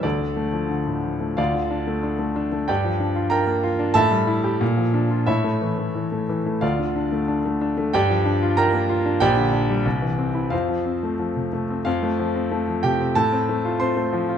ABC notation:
X:1
M:2/4
L:1/16
Q:1/4=92
K:Dm
V:1 name="Grand piano"
[DAd]4 z4 | [Fdf]8 | [Gdg]4 [Bgb]4 | [Aea]8 |
[E^ce]6 z2 | [Fdf]8 | [Gdg]4 [Bgb]4 | [K:F] [Gdg]8 |
[Fcf]6 z2 | [Ff]6 [Gg]2 | [Aa]4 [cc']4 |]
V:2 name="Grand piano"
D,, D, A, F, D, A,, F, A, | D,, D, D A, D A, D A, | G,, F, D F D B, F D | A,, G, E G B,, F, D F |
A,, A, E, A, E, A, E, A, | D,, D, D A, D A, D A, | G,, F, D F D B, F D | [K:F] B,,, D, D G, C,, E, C E |
F,, F, C A, F, C, A, C | F,, A, F, C A, F, C, C | A,, C A, F C A, F, F |]